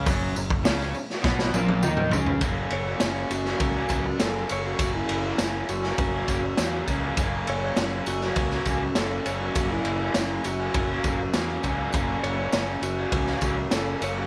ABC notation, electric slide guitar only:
X:1
M:4/4
L:1/16
Q:1/4=101
K:F#mix
V:1 name="Electric slide guitar"
z16 | z2 c4 F6 =A2 c F- | F E4- E F8 z2 | z2 c4 F6 =A2 c F- |
F E4- E F8 z2 | z2 c4 F6 =A2 c F |]